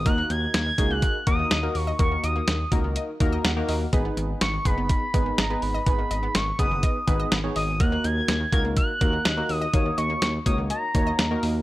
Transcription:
<<
  \new Staff \with { instrumentName = "Analog synth lead" } { \time 4/4 \key dis \phrygian \tempo 4 = 124 fis'''8 gis'''8 gis'''8. fis'''8. dis'''4 cis'''8 | cis'''8 dis'''4 r2 r8 | r4 cis'''8 b''4. ais''8 b''8~ | b''4 cis'''8 dis'''4. r8 dis'''8 |
fis'''8 gis'''4 gis'''8 fis'''4. dis'''8~ | dis'''8 cis'''8 cis'''8 dis'''8 ais''4. r8 | }
  \new Staff \with { instrumentName = "Synth keys" } { \time 4/4 \key dis \phrygian << { r1 | r2. fis''4 | r1 | r1 |
r1 | r1 | } \\ { <ais dis' fis' ais'>4~ <ais dis' fis' ais'>16 r16 <ais dis' fis' gis'>8. r16 <ais dis' fis' ais'>8 r16 <ais dis' fis' ais'>8 r16 | <ais dis' fis' ais'>4~ <ais dis' fis' ais'>16 r16 <ais dis' fis' ais'>8. r16 <ais dis' fis' ais'>8 r16 <ais dis' fis' ais'>8 r16 | <b dis' gis' b'>4~ <b dis' gis' b'>16 r16 <b dis' gis' b'>8. r16 <b dis' gis' b'>8 r16 <b dis' gis' b'>8 r16 | <b dis' gis' b'>4~ <b dis' gis' b'>16 r16 <b dis' gis' b'>8. r16 <b dis' gis' b'>8 r16 <b dis' gis' cis''>8 r16 |
<ais dis' fis' ais'>4~ <ais dis' fis' ais'>16 r16 <ais dis' fis' ais'>8. r16 <ais dis' fis' ais'>8 r16 <ais dis' fis' ais'>8 r16 | <ais dis' fis' cis''>4~ <ais dis' fis' cis''>16 r16 <ais dis' fis' cis''>8. r16 <ais dis' fis' cis''>8 r16 <ais dis' fis' ais'>8 r16 | } >> }
  \new Staff \with { instrumentName = "Synth arpeggio sound" } { \time 4/4 \key dis \phrygian dis''16 ais16 dis16 r16 ais16 dis16 r16 ais16 dis16 r16 ais16 dis16 dis''16 ais16 r16 dis''16 | ais16 dis16 dis''16 ais16 dis16 r16 ais16 dis16 dis''16 r16 dis16 dis''16 ais16 dis16 dis''16 r16 | dis''16 b16 dis16 r16 b16 dis16 r16 b16 dis16 r16 b16 dis16 dis''16 b16 r16 dis''16 | b16 dis16 dis''16 b16 dis16 r16 b16 dis16 dis''16 r16 dis16 dis''16 b16 dis16 dis''16 r16 |
dis''16 ais16 dis16 r16 ais16 dis16 r16 ais16 dis16 r16 ais16 dis16 dis''16 ais16 r16 dis''16 | ais16 dis16 dis''16 ais16 dis16 r16 ais16 dis16 dis''16 r16 dis16 dis''16 ais16 dis16 dis''16 r16 | }
  \new Staff \with { instrumentName = "Analog synth bass" } { \clef bass \time 4/4 \key dis \phrygian dis,8 dis,8 dis,8 cis,8. r16 dis,8 dis,8 dis,8 | dis,8 dis,8 dis,8 cis,8. r16 dis,8 dis,8 dis,8 | gis,,8 gis,,8 gis,,8 fis,,8. r16 gis,,8 gis,,8 gis,,8 | gis,,8 gis,,8 gis,,8 fis,,8. r16 gis,,8 gis,,8 gis,,8 |
dis,8 dis,8 dis,8 cis,8. r16 dis,8 dis,8 dis,8 | dis,8 dis,8 dis,8 cis,8. r16 dis,8 dis,8 dis,8 | }
  \new DrumStaff \with { instrumentName = "Drums" } \drummode { \time 4/4 <hh bd>8 hh8 <hh sn>8 <hh bd>8 <hh bd>8 <hh bd>8 <hh sn>8 hho8 | <hh bd>8 hh8 <hh sn>8 <hh bd>8 hh8 <hh bd>8 <hh sn>8 hho8 | <hh bd>8 hh8 <hh sn>8 <hh bd>8 <hh bd>8 <hh bd>8 <hh sn>8 hho8 | <hh bd>8 hh8 <hh sn>8 <hh bd>8 <hh bd>8 <hh bd>8 <hh sn>8 hho8 |
<hh bd>8 hh8 <hh sn>8 <hh bd>8 <hh bd>8 <hh bd>8 <hh sn>8 hho8 | <hh bd>8 hh8 <hh sn>8 <hh bd>8 hh8 <hh bd>8 <hh sn>8 hho8 | }
>>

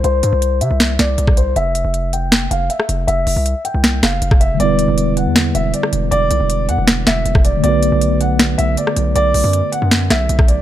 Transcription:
<<
  \new Staff \with { instrumentName = "Grand piano" } { \time 4/4 \key e \minor \tempo 4 = 158 c''4. e''4 d''4 c''8 | e''4. g''4 f''8 e''4 | e''4. g''4 f''4 e''8 | d''4. fis''4 e''8 d''4 |
d''4. fis''4 e''4 d''8 | d''4. fis''4 e''8 d''4 | d''4. fis''4 e''4 d''8 | }
  \new Staff \with { instrumentName = "Tine electric piano" } { \time 4/4 \key e \minor r1 | r1 | r1 | <d g b e' b'>1~ |
<d g b e' b'>1 | <d a b fis' b'>1~ | <d a b fis' b'>1 | }
  \new Staff \with { instrumentName = "808-style bass" } { \clef bass \time 4/4 \key e \minor c,8 g,16 c,8. c16 c,8. c,8 c,4 | f,,8. f,,4.~ f,,16 f,,8 r8 f,,8 | f,,8 f,,16 c,8 r8 c,8. f,,8 f,,4 | e,,8. e,,4 e,8. e,,8 r8 e,,8 |
e,,8 b,,16 e,,8. e,16 e,,8. e,,8 e,,4 | b,,8. b,,4.~ b,,16 b,,8 r8 b,,8 | b,,8 b,,16 fis,8 r8 fis,8. b,,8 b,,4 | }
  \new DrumStaff \with { instrumentName = "Drums" } \drummode { \time 4/4 hh8 hh8 hh8 hh8 <hh sn>8 <hh sn>8 hh16 <bd ss>16 hh8 | hh8 hh8 hh8 hh8 <hh sn>8 hh8 hh16 ss16 hh8 | hh8 hho8 hh8 hh8 <hh sn>8 <hh ss sn>8 hh16 <bd ss>16 hh8 | hh8 hh8 hh8 hh8 <hh sn>8 hh8 hh16 ss16 hh8 |
hh8 hh8 hh8 hh8 <hh sn>8 <hh sn>8 hh16 <bd ss>16 hh8 | hh8 hh8 hh8 hh8 <hh sn>8 hh8 hh16 ss16 hh8 | hh8 hho8 hh8 hh8 <hh sn>8 <hh ss sn>8 hh16 <bd ss>16 hh8 | }
>>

